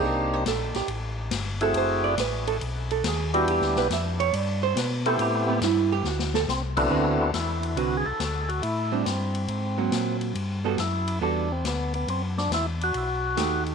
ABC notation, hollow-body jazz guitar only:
X:1
M:4/4
L:1/8
Q:"Swing" 1/4=140
K:Ddor
V:1 name="Hollow-body jazz guitar"
_B c A G z3 A | c d B A z A _A ^F | G B e ^c d =c B A | G B, E G ^F A z2 |
[K:Dmix] [D,CFB] z3 [D,CFB] z3 | z [G,CD] z3 [F,^A,^B,]3 | z [G,B,FA] z2 [G,B,FA] z3 | z6 [A,^DG]2 |]